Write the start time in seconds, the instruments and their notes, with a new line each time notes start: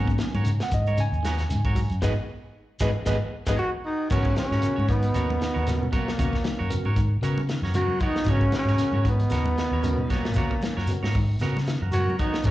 Already playing: fingered electric bass G#2, tine electric piano F#3 A#3 B3 C#4 G#5, clean electric guitar B3 F#4 A#4 C#5
0.08 kick, shekere
0.18 clean electric guitar D#3, snare, closed hi-hat, shekere
0.35 fingered electric bass G#2, clean electric guitar F#4 A#4 C#5, high conga, shekere
0.44 clean electric guitar C#3, closed hi-hat, high conga, shekere
0.60 tine electric piano F#5, snare, high conga, shekere
0.71 fingered electric bass G#2, clean electric guitar D#3, tine electric piano D#5, kick, closed hi-hat, low conga, shekere
0.87 clean electric guitar A#4 C#5, high conga, shekere
0.98 clean electric guitar C#3, tine electric piano G#5, closed hi-hat, high conga, shekere
1.12 fingered electric bass D#2, shekere
1.23 clean electric guitar D#3 B3 F#4 A#4 C#5, snare, closed hi-hat, high conga, shekere
1.38 snare, closed hi-hat, shekere
1.49 fingered electric bass G#2, clean electric guitar C#3, closed hi-hat, high conga, shekere
1.65 clean electric guitar F#4 A#4 C#5, kick, shekere
1.75 clean electric guitar F#3, kick, open hi-hat, shekere
1.90 fingered electric bass F#2, closed hi-hat, shekere
2.02 fingered electric bass G#1, clean electric guitar G#2 B2 D#3 F#4 G#4 B4, tine electric piano G#4 B4 D#5, kick, snare, low conga, shekere
2.79 fingered electric bass G#1, clean electric guitar G#2 B2 D#3 F#4 G#4 B4, tine electric piano G#4 B4 D#5, kick, snare, low conga, shekere
3.06 fingered electric bass G#1, clean electric guitar G#2 B2 D#3 F#4 G#4 B4, tine electric piano G#4 B4 D#5, kick, snare, low conga, shekere
3.46 fingered electric bass G#1, clean electric guitar G#2 B2 D#3 F#4 G#4 B4, tine electric piano G#4 B4 D#5, kick, snare, low conga, shekere
3.56 baritone saxophone F#3, trombone F#4, alto saxophone A#4
3.84 baritone saxophone D#3, trombone D#4, alto saxophone F#4
4.10 fingered electric bass G#2, clean electric guitar C#3 B3 F#4 A#4 C#5, tine electric piano B3 C#4 F#4 A#4, trombone C#4, alto saxophone F#4, kick, crash, high conga, low conga, shekere
4.14 baritone saxophone C#3
4.25 kick
4.36 baritone saxophone C#3, clean electric guitar D#3, trombone C#4, alto saxophone F#4, snare, closed hi-hat, high conga, shekere
4.51 fingered electric bass G#2, clean electric guitar F#4 A#4 C#5, snare
4.62 clean electric guitar C#3, tine electric piano B3 C#4 F#4 A#4, muted fingered electric bass stroke, closed hi-hat, high conga, shekere
4.76 fingered electric bass G#2, clean electric guitar F#4 C#5, high conga
4.88 baritone saxophone B2, clean electric guitar D#3, trombone B3, alto saxophone D#4, kick, closed hi-hat, high conga, shekere
5.02 closed hi-hat
5.14 fingered electric bass D#2, clean electric guitar B3 F#4 A#4 C#5, tine electric piano B3 C#4 F#4 A#4, muted clean electric guitar stroke, closed hi-hat, high conga, shekere
5.30 high conga
5.41 clean electric guitar D#3, snare, closed hi-hat, shekere
5.54 fingered electric bass D#2, clean electric guitar F#4 A#4 C#5, low conga
5.67 clean electric guitar C#3, tine electric piano B3 C#4 F#4 A#4, snare, closed hi-hat, high conga, shekere
5.82 fingered electric bass B2, high conga
5.92 baritone saxophone A#2, clean electric guitar F#3 B3 F#4 A#4 C#5, trombone A#3, alto saxophone C#4, kick, closed hi-hat, shekere
6.08 snare
6.18 fingered electric bass D#2, clean electric guitar C#3 B3 F#4 A#4 C#5, tine electric piano B3 C#4 F#4 A#4, kick, closed hi-hat, high conga, low conga, shekere
6.33 kick, snare
6.44 clean electric guitar D#3, muted fingered electric bass stroke, snare, closed hi-hat, high conga, shekere
6.59 fingered electric bass F#2, clean electric guitar F#4 A#4 C#5
6.70 clean electric guitar C#3, tine electric piano B3 C#4 F#4 A#4, muted fingered electric bass stroke, closed hi-hat, high conga, shekere
6.85 fingered electric bass G#2, clean electric guitar F#4 A#4 C#5, high conga
6.96 clean electric guitar D#3, kick, closed hi-hat, high conga, shekere
7.22 fingered electric bass C#3, clean electric guitar C#3 B3 F#4 A#4 C#5, tine electric piano B3 C#4 F#4 A#4, closed hi-hat, high conga, shekere
7.38 high conga
7.49 clean electric guitar D#3, snare, closed hi-hat, shekere
7.62 fingered electric bass F#2, clean electric guitar F#4 A#4 C#5, snare, low conga
7.74 clean electric guitar C#3, baritone saxophone F#3, tine electric piano B3 C#4 F#4 A#4, trombone F#4, alto saxophone A#4, closed hi-hat, high conga, shekere
7.88 fingered electric bass F#3, high conga
8.00 baritone saxophone D#3, clean electric guitar F#3 B3 F#4 A#4 C#5, trombone D#4, alto saxophone F#4, kick, closed hi-hat, shekere
8.16 snare
8.25 fingered electric bass G#2, clean electric guitar C#3 B3 F#4 A#4, tine electric piano B3 C#4 F#4 A#4, kick, closed hi-hat, high conga, low conga, shekere
8.29 baritone saxophone C#3, trombone C#4, alto saxophone F#4, clean electric guitar C#5
8.41 kick
8.52 baritone saxophone C#3, clean electric guitar D#3, snare, closed hi-hat, high conga, shekere
8.57 trombone C#4, alto saxophone F#4
8.65 fingered electric bass G#2, clean electric guitar C#5, snare
8.69 clean electric guitar F#4 A#4
8.78 clean electric guitar C#3, tine electric piano B3 C#4 F#4 A#4, snare, closed hi-hat, high conga, shekere
8.92 fingered electric bass G#2, clean electric guitar F#4 A#4 C#5, high conga
9.05 clean electric guitar D#3, kick, closed hi-hat, shekere
9.09 baritone saxophone B2, trombone B3, alto saxophone D#4
9.19 closed hi-hat, low conga
9.30 fingered electric bass D#2, clean electric guitar C#3 B3 F#4 A#4 C#5, tine electric piano B3 C#4 F#4 A#4, snare, closed hi-hat, high conga, shekere
9.46 high conga
9.58 clean electric guitar D#3, snare, closed hi-hat, shekere
9.71 fingered electric bass D#2, clean electric guitar F#4 A#4 C#5, low conga
9.83 clean electric guitar C#3, tine electric piano B3 C#4 F#4 A#4, closed hi-hat, high conga, shekere
9.98 fingered electric bass B2, high conga
10.09 baritone saxophone A#2, clean electric guitar F#3 B3 F#4 A#4 C#5, trombone A#3, alto saxophone C#4, kick, snare, closed hi-hat, shekere
10.25 snare
10.34 fingered electric bass D#2, clean electric guitar C#3 B3 F#4 C#5, tine electric piano B3 C#4 F#4 A#4, kick, closed hi-hat, high conga, low conga, shekere
10.38 clean electric guitar A#4
10.51 kick
10.62 clean electric guitar D#3, muted fingered electric bass stroke, snare, closed hi-hat, high conga, shekere
10.77 fingered electric bass F#2, clean electric guitar F#4 A#4 C#5, snare
10.87 clean electric guitar C#3, tine electric piano B3 C#4 F#4 A#4, muted fingered electric bass stroke, closed hi-hat, high conga, shekere
11.03 fingered electric bass G#2, clean electric guitar F#4 A#4 C#5, snare, high conga
11.12 kick, open hi-hat, high conga, shekere
11.17 clean electric guitar D#3
11.39 fingered electric bass C#3, clean electric guitar C#3 B3 F#4 A#4 C#5, tine electric piano B3 C#4 F#4 A#4, snare, closed hi-hat, shekere
11.57 snare, high conga
11.66 clean electric guitar D#3, snare, closed hi-hat, shekere
11.81 fingered electric bass F#2, clean electric guitar F#4 A#4, muted clean electric guitar stroke, low conga
11.92 clean electric guitar C#3, baritone saxophone F#3, tine electric piano B3 C#4 F#4 A#4, trombone F#4, alto saxophone A#4, closed hi-hat, shekere
11.96 high conga
12.07 fingered electric bass F#3, high conga
12.19 baritone saxophone D#3, clean electric guitar F#3 B3 F#4 A#4 C#5, trombone D#4, alto saxophone F#4, kick, closed hi-hat, low conga, shekere
12.34 snare, low conga
12.42 fingered electric bass G#2, baritone saxophone C#3, tine electric piano B3 C#4 F#4 A#4, clean electric guitar B3, trombone C#4, alto saxophone F#4, kick, closed hi-hat, shekere
12.46 clean electric guitar C#3 F#4 A#4 C#5